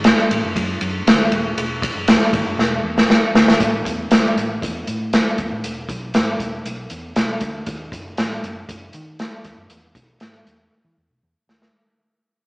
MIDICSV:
0, 0, Header, 1, 4, 480
1, 0, Start_track
1, 0, Tempo, 508475
1, 1482, Time_signature, 4, 2, 24, 8
1, 11765, End_track
2, 0, Start_track
2, 0, Title_t, "Fingered electric bass"
2, 0, Program_c, 0, 33
2, 0, Note_on_c, 0, 32, 104
2, 120, Note_off_c, 0, 32, 0
2, 291, Note_on_c, 0, 33, 100
2, 384, Note_off_c, 0, 33, 0
2, 413, Note_on_c, 0, 30, 96
2, 505, Note_off_c, 0, 30, 0
2, 528, Note_on_c, 0, 42, 104
2, 719, Note_off_c, 0, 42, 0
2, 769, Note_on_c, 0, 42, 103
2, 959, Note_off_c, 0, 42, 0
2, 1008, Note_on_c, 0, 38, 88
2, 1198, Note_off_c, 0, 38, 0
2, 1248, Note_on_c, 0, 27, 90
2, 1438, Note_off_c, 0, 27, 0
2, 1485, Note_on_c, 0, 28, 99
2, 1772, Note_off_c, 0, 28, 0
2, 1843, Note_on_c, 0, 30, 99
2, 2035, Note_off_c, 0, 30, 0
2, 2199, Note_on_c, 0, 32, 98
2, 2296, Note_off_c, 0, 32, 0
2, 2320, Note_on_c, 0, 30, 93
2, 2417, Note_off_c, 0, 30, 0
2, 2440, Note_on_c, 0, 28, 111
2, 2633, Note_off_c, 0, 28, 0
2, 2680, Note_on_c, 0, 40, 98
2, 2873, Note_off_c, 0, 40, 0
2, 3158, Note_on_c, 0, 38, 98
2, 3352, Note_off_c, 0, 38, 0
2, 3404, Note_on_c, 0, 33, 93
2, 3595, Note_off_c, 0, 33, 0
2, 3636, Note_on_c, 0, 40, 104
2, 3830, Note_off_c, 0, 40, 0
2, 3883, Note_on_c, 0, 37, 90
2, 4075, Note_off_c, 0, 37, 0
2, 4122, Note_on_c, 0, 33, 99
2, 4314, Note_off_c, 0, 33, 0
2, 4366, Note_on_c, 0, 40, 96
2, 4556, Note_off_c, 0, 40, 0
2, 4600, Note_on_c, 0, 45, 91
2, 4889, Note_off_c, 0, 45, 0
2, 5085, Note_on_c, 0, 40, 72
2, 5179, Note_off_c, 0, 40, 0
2, 5203, Note_on_c, 0, 45, 82
2, 5298, Note_off_c, 0, 45, 0
2, 5323, Note_on_c, 0, 28, 93
2, 5514, Note_off_c, 0, 28, 0
2, 5556, Note_on_c, 0, 35, 94
2, 5803, Note_on_c, 0, 32, 83
2, 5817, Note_off_c, 0, 35, 0
2, 5994, Note_off_c, 0, 32, 0
2, 6039, Note_on_c, 0, 28, 95
2, 6232, Note_off_c, 0, 28, 0
2, 6283, Note_on_c, 0, 35, 111
2, 6474, Note_off_c, 0, 35, 0
2, 6523, Note_on_c, 0, 40, 94
2, 6714, Note_off_c, 0, 40, 0
2, 6762, Note_on_c, 0, 35, 91
2, 6954, Note_off_c, 0, 35, 0
2, 7000, Note_on_c, 0, 38, 86
2, 7192, Note_off_c, 0, 38, 0
2, 7240, Note_on_c, 0, 39, 101
2, 7432, Note_off_c, 0, 39, 0
2, 7477, Note_on_c, 0, 30, 95
2, 7671, Note_off_c, 0, 30, 0
2, 7724, Note_on_c, 0, 33, 90
2, 7914, Note_off_c, 0, 33, 0
2, 7959, Note_on_c, 0, 30, 94
2, 8152, Note_off_c, 0, 30, 0
2, 8200, Note_on_c, 0, 30, 93
2, 8392, Note_off_c, 0, 30, 0
2, 8443, Note_on_c, 0, 51, 107
2, 8730, Note_off_c, 0, 51, 0
2, 8921, Note_on_c, 0, 39, 88
2, 9017, Note_off_c, 0, 39, 0
2, 9036, Note_on_c, 0, 42, 87
2, 9133, Note_off_c, 0, 42, 0
2, 9159, Note_on_c, 0, 40, 102
2, 9352, Note_off_c, 0, 40, 0
2, 9394, Note_on_c, 0, 35, 97
2, 9589, Note_off_c, 0, 35, 0
2, 9639, Note_on_c, 0, 44, 72
2, 9832, Note_off_c, 0, 44, 0
2, 9883, Note_on_c, 0, 40, 91
2, 10074, Note_off_c, 0, 40, 0
2, 10238, Note_on_c, 0, 52, 97
2, 10335, Note_off_c, 0, 52, 0
2, 10361, Note_on_c, 0, 40, 77
2, 10456, Note_off_c, 0, 40, 0
2, 10483, Note_on_c, 0, 35, 85
2, 10577, Note_off_c, 0, 35, 0
2, 10602, Note_on_c, 0, 40, 90
2, 10697, Note_off_c, 0, 40, 0
2, 10833, Note_on_c, 0, 39, 83
2, 11028, Note_off_c, 0, 39, 0
2, 11765, End_track
3, 0, Start_track
3, 0, Title_t, "Muted fingered electric bass strokes"
3, 3040, Note_on_c, 9, 29, 50
3, 3135, Note_off_c, 9, 29, 0
3, 11765, End_track
4, 0, Start_track
4, 0, Title_t, "Drums"
4, 38, Note_on_c, 9, 51, 77
4, 46, Note_on_c, 9, 38, 127
4, 132, Note_off_c, 9, 51, 0
4, 140, Note_off_c, 9, 38, 0
4, 168, Note_on_c, 9, 38, 36
4, 263, Note_off_c, 9, 38, 0
4, 291, Note_on_c, 9, 51, 67
4, 386, Note_off_c, 9, 51, 0
4, 527, Note_on_c, 9, 36, 96
4, 531, Note_on_c, 9, 51, 74
4, 622, Note_off_c, 9, 36, 0
4, 625, Note_off_c, 9, 51, 0
4, 763, Note_on_c, 9, 51, 67
4, 857, Note_off_c, 9, 51, 0
4, 1012, Note_on_c, 9, 51, 83
4, 1018, Note_on_c, 9, 38, 123
4, 1107, Note_off_c, 9, 51, 0
4, 1112, Note_off_c, 9, 38, 0
4, 1244, Note_on_c, 9, 51, 65
4, 1338, Note_off_c, 9, 51, 0
4, 1488, Note_on_c, 9, 51, 81
4, 1582, Note_off_c, 9, 51, 0
4, 1721, Note_on_c, 9, 36, 108
4, 1729, Note_on_c, 9, 51, 79
4, 1816, Note_off_c, 9, 36, 0
4, 1823, Note_off_c, 9, 51, 0
4, 1959, Note_on_c, 9, 51, 78
4, 1967, Note_on_c, 9, 38, 120
4, 2053, Note_off_c, 9, 51, 0
4, 2062, Note_off_c, 9, 38, 0
4, 2088, Note_on_c, 9, 38, 37
4, 2183, Note_off_c, 9, 38, 0
4, 2200, Note_on_c, 9, 36, 96
4, 2203, Note_on_c, 9, 51, 67
4, 2295, Note_off_c, 9, 36, 0
4, 2298, Note_off_c, 9, 51, 0
4, 2448, Note_on_c, 9, 38, 72
4, 2543, Note_off_c, 9, 38, 0
4, 2810, Note_on_c, 9, 38, 84
4, 2905, Note_off_c, 9, 38, 0
4, 2927, Note_on_c, 9, 38, 101
4, 3022, Note_off_c, 9, 38, 0
4, 3166, Note_on_c, 9, 38, 110
4, 3261, Note_off_c, 9, 38, 0
4, 3289, Note_on_c, 9, 38, 113
4, 3383, Note_off_c, 9, 38, 0
4, 3401, Note_on_c, 9, 42, 99
4, 3403, Note_on_c, 9, 36, 115
4, 3496, Note_off_c, 9, 42, 0
4, 3497, Note_off_c, 9, 36, 0
4, 3638, Note_on_c, 9, 36, 96
4, 3645, Note_on_c, 9, 42, 88
4, 3732, Note_off_c, 9, 36, 0
4, 3740, Note_off_c, 9, 42, 0
4, 3877, Note_on_c, 9, 42, 84
4, 3886, Note_on_c, 9, 38, 116
4, 3972, Note_off_c, 9, 42, 0
4, 3980, Note_off_c, 9, 38, 0
4, 4009, Note_on_c, 9, 38, 35
4, 4103, Note_off_c, 9, 38, 0
4, 4130, Note_on_c, 9, 42, 78
4, 4224, Note_off_c, 9, 42, 0
4, 4364, Note_on_c, 9, 36, 98
4, 4371, Note_on_c, 9, 42, 88
4, 4459, Note_off_c, 9, 36, 0
4, 4465, Note_off_c, 9, 42, 0
4, 4600, Note_on_c, 9, 42, 73
4, 4695, Note_off_c, 9, 42, 0
4, 4843, Note_on_c, 9, 42, 103
4, 4848, Note_on_c, 9, 38, 119
4, 4937, Note_off_c, 9, 42, 0
4, 4943, Note_off_c, 9, 38, 0
4, 5079, Note_on_c, 9, 42, 72
4, 5084, Note_on_c, 9, 36, 90
4, 5173, Note_off_c, 9, 42, 0
4, 5178, Note_off_c, 9, 36, 0
4, 5323, Note_on_c, 9, 42, 98
4, 5418, Note_off_c, 9, 42, 0
4, 5557, Note_on_c, 9, 36, 97
4, 5563, Note_on_c, 9, 42, 88
4, 5651, Note_off_c, 9, 36, 0
4, 5658, Note_off_c, 9, 42, 0
4, 5795, Note_on_c, 9, 42, 88
4, 5803, Note_on_c, 9, 38, 123
4, 5890, Note_off_c, 9, 42, 0
4, 5898, Note_off_c, 9, 38, 0
4, 6038, Note_on_c, 9, 36, 91
4, 6042, Note_on_c, 9, 42, 83
4, 6132, Note_off_c, 9, 36, 0
4, 6136, Note_off_c, 9, 42, 0
4, 6283, Note_on_c, 9, 42, 87
4, 6377, Note_off_c, 9, 42, 0
4, 6512, Note_on_c, 9, 42, 79
4, 6606, Note_off_c, 9, 42, 0
4, 6758, Note_on_c, 9, 42, 98
4, 6763, Note_on_c, 9, 38, 109
4, 6852, Note_off_c, 9, 42, 0
4, 6857, Note_off_c, 9, 38, 0
4, 6991, Note_on_c, 9, 42, 72
4, 7000, Note_on_c, 9, 36, 93
4, 7085, Note_off_c, 9, 42, 0
4, 7094, Note_off_c, 9, 36, 0
4, 7235, Note_on_c, 9, 42, 101
4, 7240, Note_on_c, 9, 36, 120
4, 7329, Note_off_c, 9, 42, 0
4, 7334, Note_off_c, 9, 36, 0
4, 7477, Note_on_c, 9, 36, 103
4, 7486, Note_on_c, 9, 42, 85
4, 7571, Note_off_c, 9, 36, 0
4, 7580, Note_off_c, 9, 42, 0
4, 7716, Note_on_c, 9, 42, 86
4, 7725, Note_on_c, 9, 38, 123
4, 7811, Note_off_c, 9, 42, 0
4, 7819, Note_off_c, 9, 38, 0
4, 7847, Note_on_c, 9, 38, 34
4, 7941, Note_off_c, 9, 38, 0
4, 7965, Note_on_c, 9, 42, 77
4, 8060, Note_off_c, 9, 42, 0
4, 8201, Note_on_c, 9, 36, 92
4, 8203, Note_on_c, 9, 42, 86
4, 8295, Note_off_c, 9, 36, 0
4, 8297, Note_off_c, 9, 42, 0
4, 8429, Note_on_c, 9, 42, 76
4, 8524, Note_off_c, 9, 42, 0
4, 8677, Note_on_c, 9, 42, 86
4, 8683, Note_on_c, 9, 38, 112
4, 8772, Note_off_c, 9, 42, 0
4, 8777, Note_off_c, 9, 38, 0
4, 8915, Note_on_c, 9, 42, 75
4, 8922, Note_on_c, 9, 36, 86
4, 8925, Note_on_c, 9, 38, 29
4, 9009, Note_off_c, 9, 42, 0
4, 9016, Note_off_c, 9, 36, 0
4, 9019, Note_off_c, 9, 38, 0
4, 9155, Note_on_c, 9, 42, 96
4, 9249, Note_off_c, 9, 42, 0
4, 9393, Note_on_c, 9, 36, 98
4, 9396, Note_on_c, 9, 42, 94
4, 9487, Note_off_c, 9, 36, 0
4, 9491, Note_off_c, 9, 42, 0
4, 9630, Note_on_c, 9, 42, 90
4, 9638, Note_on_c, 9, 38, 120
4, 9724, Note_off_c, 9, 42, 0
4, 9733, Note_off_c, 9, 38, 0
4, 9761, Note_on_c, 9, 38, 38
4, 9855, Note_off_c, 9, 38, 0
4, 9882, Note_on_c, 9, 42, 76
4, 9976, Note_off_c, 9, 42, 0
4, 10848, Note_on_c, 9, 38, 91
4, 10942, Note_off_c, 9, 38, 0
4, 10968, Note_on_c, 9, 38, 91
4, 11062, Note_off_c, 9, 38, 0
4, 11765, End_track
0, 0, End_of_file